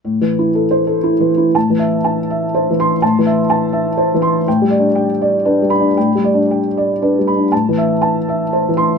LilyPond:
<<
  \new Staff \with { instrumentName = "Felt piano" } { \time 3/4 \key a \minor \tempo 4 = 120 << { r4 \tuplet 3/2 { r8 c''4 } r4 | r2 r8 c'''8~ | c'''8 r2 r8 | r2 r8 b''8~ |
b''8 r2 r8 | r2 r8 c'''8 | } \\ { r2. | a''8 e''8 a''8 e''8 c''4 | a''8 e''8 a''8 e''8 c''8 c'''8 | g''8 d''8 g''8 d''8 b'4 |
g''8 d''8 g''8 d''8 b'8 b''8 | a''8 e''8 a''8 e''8 c''4 | } >> }
  \new Staff \with { instrumentName = "Felt piano" } { \clef bass \time 3/4 \key a \minor \tuplet 3/2 { a,8 e8 e'8 a'4 a'8 e'8 e8 e'8 } | \tuplet 3/2 { a,8 e4 } r4 \tuplet 3/2 { r8 e4 } | \tuplet 3/2 { a,8 e4 } r4 \tuplet 3/2 { r8 e4 } | \tuplet 3/2 { a,8 g8 d'8 } r4 \tuplet 3/2 { d'8 g8 d'8 } |
\tuplet 3/2 { a,8 g8 d'8 } r4 \tuplet 3/2 { d'8 g8 d'8 } | \tuplet 3/2 { a,8 e4 } r4 \tuplet 3/2 { r8 e4 } | }
>>